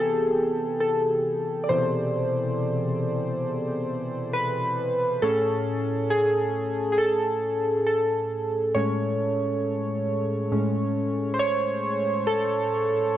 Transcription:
synth keys
Already playing: C3 E3 B3 G4 G#4 A4
0.81 A4
1.64 D5
1.69 B2 C3 E3 C5
4.33 B4
5.22 A2 C#4 G#4 A4
6.10 G#4
6.92 G#4
6.98 A4
7.87 A4
8.75 A2 G#3 C#4 C#5
10.52 A2 G#3 C#4
11.34 C5
11.39 C#5
12.27 A4

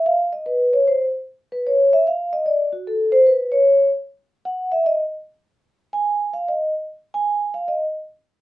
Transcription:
vibraphone
0.06 F5
0.33 D#5
0.46 B4
0.73 C#5
0.87 C5
1.52 B4
1.67 C#5
1.93 E5
2.07 F5
2.33 D#5
2.46 D5
2.73 F#4
2.87 A4
3.12 C5
3.26 B4
3.52 C#5
4.45 F#5
4.72 E5
4.86 D#5
5.93 G#5
6.33 F5
6.48 D#5
7.14 G#5
7.54 F5
7.68 D#5

